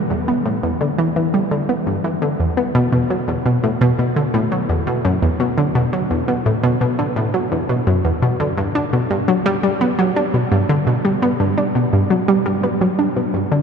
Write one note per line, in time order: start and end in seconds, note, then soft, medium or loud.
0.10 0.25 E2 medium
0.28 0.38 B3 medium
0.45 0.56 A2 medium
0.63 0.73 E2 medium
0.81 0.87 D3 medium
0.98 1.09 E3 medium
1.16 1.26 E3 medium
1.34 1.40 G3 medium
1.51 1.66 D3 medium
1.69 1.79 B3 medium
1.87 1.97 G2 medium
2.04 2.14 E3 medium
2.22 2.28 D3 medium
2.40 2.50 E2 medium
2.57 2.67 B3 medium
2.75 2.90 B2 loud
2.92 3.08 B2 medium
3.10 3.20 F#3 medium
3.28 3.38 E2 medium
3.46 3.56 B2 medium
3.63 3.69 A2 medium
3.81 3.91 B2 loud
3.99 4.09 B2 medium
4.16 4.22 D3 medium
4.34 4.49 A2 medium
4.52 4.62 F#3 medium
4.69 4.79 E2 medium
4.87 4.97 B2 medium
5.05 5.20 F#2 medium
5.22 5.28 E2 medium
5.40 5.50 B2 medium
5.58 5.64 D3 medium
5.75 5.90 B2 medium
5.93 6.03 F#3 medium
6.11 6.20 E2 medium
6.28 6.38 B2 medium
6.46 6.52 A2 medium
6.63 6.73 B2 medium
6.81 6.91 B2 medium
6.99 7.05 D3 medium
7.16 7.31 A2 medium
7.34 7.44 F#3 medium
7.52 7.62 E2 medium
7.69 7.79 B2 medium
7.87 8.02 F#2 medium
8.05 8.11 E2 medium
8.22 8.32 B2 medium
8.40 8.46 D3 medium
8.58 8.72 G2 medium
8.75 8.85 D4 medium
8.93 9.03 B2 medium
9.10 9.20 G2 medium
9.28 9.34 F#3 medium
9.46 9.56 G3 loud
9.63 9.73 G3 medium
9.81 9.87 B3 medium
9.99 10.14 F#3 medium
10.16 10.26 D4 medium
10.34 10.44 B2 medium
10.52 10.62 G2 medium
10.69 10.84 D3 medium
10.87 10.93 B2 medium
11.05 11.15 G3 medium
11.22 11.28 B3 medium
11.40 11.55 G2 medium
11.58 11.68 D4 medium
11.75 11.85 B2 medium
11.93 12.03 G2 medium
12.10 12.16 F#3 medium
12.28 12.38 G3 medium
12.46 12.56 G3 medium
12.63 12.69 B3 medium
12.81 12.96 F#3 medium
12.99 13.09 D4 medium
13.16 13.26 B2 medium
13.34 13.44 G2 medium
13.52 13.62 D3 medium